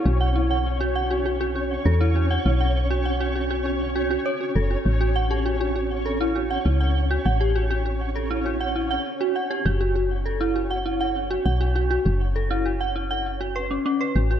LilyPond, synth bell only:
\new Staff \with { instrumentName = "Synth bell" } { \time 4/4 \key fis \minor \tempo 4 = 100 fis'16 fis''16 e'16 fis''16 r16 fis'16 fis''16 fis'16 fis'16 fis'16 fis'16 r16 a'16 e'16 fis'16 fis''16 | e'16 fis''16 r16 fis'16 fis''16 fis'16 fis'16 fis'16 fis'16 r16 fis'16 fis'16 cis''16 fis'16 a'16 fis'16 | r16 fis'16 fis''16 g'16 fis'16 fis'16 fis'16 r16 a'16 e'16 fis'16 fis''16 e'16 fis''16 r16 fis'16 | fis''16 g'16 fis'16 fis'16 fis'16 r16 a'16 e'16 fis'16 fis''16 e'16 fis''16 r16 fis'16 fis''16 g'16 |
fis'16 fis'16 fis'16 r16 a'16 e'16 fis'16 fis''16 e'16 fis''16 r16 fis'16 fis''16 fis'16 fis'16 fis'16 | fis'16 r16 a'16 e'16 fis'16 fis''16 e'16 fis''16 r16 fis'16 b'16 cis'16 cis'16 b'16 fis'16 fis'16 | }